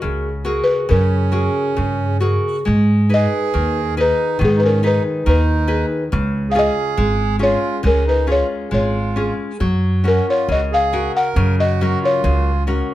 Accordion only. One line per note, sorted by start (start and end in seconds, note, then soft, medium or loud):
0.91 2.17 C#4 medium
3.14 3.95 G#4 medium
4.00 4.38 D#4 medium
4.43 4.49 B3 medium
4.56 4.61 D#4 medium
4.62 4.82 C#4 medium
4.84 5.03 D#4 medium
5.25 5.86 D#4 medium
6.50 6.54 G#4 medium
6.56 7.36 G#4 medium
7.42 7.81 F4 medium
7.85 8.05 C#4 medium
8.07 8.26 D#4 medium
8.28 8.48 F4 medium
8.73 9.34 F4 medium
10.07 10.26 C#4 medium
10.28 10.48 F4 medium
10.52 10.61 F#4 medium
10.72 11.12 G#4 medium
11.15 11.56 A#4 medium
11.58 11.99 F#4 medium
12.03 12.64 F4 medium